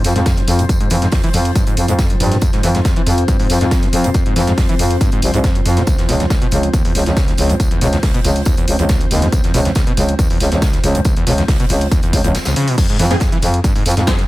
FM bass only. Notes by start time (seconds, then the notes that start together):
0.04 F2
0.16 F2
0.48 F2
0.91 F2
1.34 F2
1.77 F2
1.88 F2
2.20 G2
2.63 F2
3.07 F2
3.50 F2
3.61 F2
3.93 F2
4.36 F2
4.79 F2
5.22 C2
5.34 C2
5.66 F2
6.09 C#2
6.52 C#2
6.95 C#2
7.06 C#2
7.38 C#2
7.81 C#2
8.25 C#2
8.68 C#2
8.79 C#2
9.11 D#2
9.54 C#2
9.97 C#2
10.40 C#2
10.52 C#2
10.84 C#2
11.27 C#2
11.70 C#2
12.13 C#2
12.24 C#2
12.99 F2
13.43 F2
13.86 F2
13.97 F2